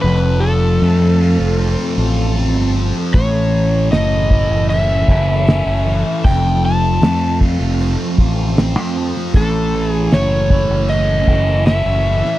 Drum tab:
HH |----------------|o---o---o---o---|o---o---o---o---|o---o---o---o---|
SD |----------------|----o-------o---|----o-------o--o|----o-------o--o|
BD |----------------|o-----o---o-----|o-----o---o-----|o-----o---o-----|